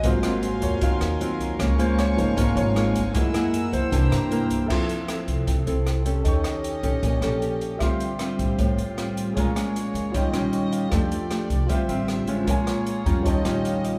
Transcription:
0.03 G#1 G#2 F#3 A#3 C4 F4 A#4 C5 F5 G#5 C6, kick, closed hi-hat
0.23 F#3 C4 F4, cross-stick, closed hi-hat
0.43 closed hi-hat
0.62 D#2 C#5, kick, closed hi-hat
0.81 D#2 D#3 F#3 C4 F4 F5, kick, closed hi-hat
1.01 D#2, cross-stick, closed hi-hat
1.21 F#3 C4 F4, closed hi-hat
1.40 kick, closed hi-hat
1.59 C#2 C#3 G#3 A#3 F4 F5 G#5 C#6, kick, cross-stick, closed hi-hat
1.78 G#3 A#3 F4 C5, closed hi-hat
1.99 C#5, cross-stick, closed hi-hat
2.17 G#1 F3 A#3 D#4 C5, kick, closed hi-hat
2.36 G#1 G#2 G#3 A#3 F4 A#4, kick, closed hi-hat
2.56 G#1 C#5, closed hi-hat
2.75 G#3 A#3 F4, cross-stick, closed hi-hat
2.95 kick, closed hi-hat
3.14 F#2 F#3 G#3 A#3 E4 G#4 A#4 F#5 E6, kick, closed hi-hat
3.34 A#3 E4 G#4, cross-stick, closed hi-hat
3.54 closed hi-hat
3.73 C#2 C5, kick, closed hi-hat
3.91 C2 C3 E3 A#3 D4 E4 G4 C5 G5 A#5, kick, closed hi-hat
4.11 G2, cross-stick, closed hi-hat
4.31 A#3 E4 G4 A#4, closed hi-hat
4.50 kick, closed hi-hat
4.66 F2 F3 C4 A4 E5, kick, cross-stick, crash
4.70 E4 F4 A4 C6
4.89 closed hi-hat
5.08 C4 E4 A4, cross-stick, closed hi-hat
5.28 C2, kick, closed hi-hat
5.47 C2 C3, kick, closed hi-hat
5.67 C2 C4 E4 A4, closed hi-hat
5.87 cross-stick, closed hi-hat
6.05 C#4 G4 A4, closed hi-hat
6.22 D#2 D#3 C#4 G4 A4 D#5 G5, kick, closed hi-hat
6.28 C#6
6.44 cross-stick, closed hi-hat
6.64 closed hi-hat
6.83 A#1 C#4 G4 A4, kick, closed hi-hat
7.02 A#1 A#2, kick, closed hi-hat
7.21 A#1 C#4 G4 A4, cross-stick, closed hi-hat
7.42 closed hi-hat
7.61 closed hi-hat
7.77 D2 D3 C4 F4 G4 E5 F5, kick, cross-stick, closed hi-hat
7.81 G3 C4 F4 C6
8.00 closed hi-hat
8.19 G3 C4 F4, cross-stick, closed hi-hat
8.39 A1, kick, closed hi-hat
8.58 A1 A2, kick, closed hi-hat
8.78 A1, closed hi-hat
8.97 G3 C4 F4, cross-stick, closed hi-hat
9.17 closed hi-hat
9.33 A#1 A#2 G#3 A#3 C#4 G#4 C#5, kick, closed hi-hat
9.37 F4 F5 A#5
9.56 G#3 C#4 F4, cross-stick, closed hi-hat
9.76 closed hi-hat
9.94 C#2, closed hi-hat
10.12 D#2 D#3 G3 C#4 F4 G4 C#5 D#5, kick, closed hi-hat
10.18 G5
10.34 A#1 G3 C#4 F4, cross-stick, closed hi-hat
10.53 C#6, closed hi-hat
10.72 F5, closed hi-hat
10.89 F2 F3 A3 D4 F4 G4 A4 D5, kick, cross-stick, closed hi-hat
10.95 G5
11.12 closed hi-hat
11.30 A3 D4 G4, cross-stick, closed hi-hat
11.50 C2, kick, closed hi-hat
11.67 D2 D3 G3 C4 F4 G4 C5 E5, kick, closed hi-hat
11.73 G5
11.89 A1 G3 C4 F4, closed hi-hat
12.08 cross-stick, closed hi-hat
12.27 G#3 C#4 F4, closed hi-hat
12.44 A#1 A#2 A#3 F4 G#4 A#4 C#5, kick, closed hi-hat
12.49 C#5 G#5
12.67 cross-stick, closed hi-hat
12.86 closed hi-hat
13.06 F2 G3 C#4 F4 A#5, kick, closed hi-hat
13.23 D#2 D#3 C#4 F4 G4 C#5 D#5 A5, kick, closed hi-hat
13.28 G5
13.45 A#1 G3 C#4 F4 G5, cross-stick, closed hi-hat
13.64 F5, closed hi-hat
13.84 D#5, closed hi-hat

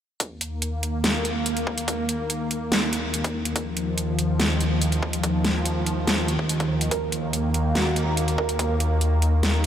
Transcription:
0.20 D#2 D#3 A#3, kick, closed hi-hat
0.41 closed hi-hat
0.62 closed hi-hat
0.83 closed hi-hat
1.04 snare, closed hi-hat
1.25 closed hi-hat
1.46 closed hi-hat
1.57 closed hi-hat
1.67 kick
1.78 closed hi-hat
1.88 kick, closed hi-hat
2.09 closed hi-hat
2.30 closed hi-hat
2.51 closed hi-hat
2.72 snare, closed hi-hat
2.93 closed hi-hat
3.14 closed hi-hat
3.24 kick, closed hi-hat
3.45 closed hi-hat
3.56 F3, kick, closed hi-hat
3.77 closed hi-hat
3.98 closed hi-hat
4.19 closed hi-hat
4.40 snare, closed hi-hat
4.61 closed hi-hat
4.82 closed hi-hat
4.92 closed hi-hat
5.03 kick
5.13 closed hi-hat
5.24 kick, closed hi-hat
5.44 snare, closed hi-hat
5.65 closed hi-hat
5.86 closed hi-hat
6.07 snare, closed hi-hat
6.28 closed hi-hat
6.39 kick
6.49 closed hi-hat
6.60 kick, closed hi-hat
6.81 closed hi-hat
6.91 A#3 A#4, kick, closed hi-hat
7.12 closed hi-hat
7.33 closed hi-hat
7.54 closed hi-hat
7.75 F#4, snare, closed hi-hat
7.96 closed hi-hat
8.17 closed hi-hat
8.28 closed hi-hat
8.38 A#4, kick
8.49 closed hi-hat
8.59 kick, closed hi-hat
8.80 closed hi-hat
9.01 closed hi-hat
9.22 closed hi-hat
9.43 snare, closed hi-hat

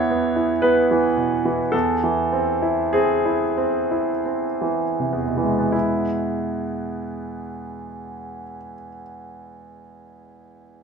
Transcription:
Already playing: E2 E3 B3 E4 G#4 C#5
0.10 B3
0.36 E4
0.62 B3 B4
0.91 E3
1.17 B2
1.45 E3
1.72 E2 A4
2.04 E3
2.33 C4
2.62 E4
2.93 C4 G#4
3.25 E4
3.57 C4
3.91 E4
4.25 C4
4.61 E3
5.00 C3
5.12 E2
5.27 B2
5.37 E3
5.43 G#3
5.59 B3
5.72 E4

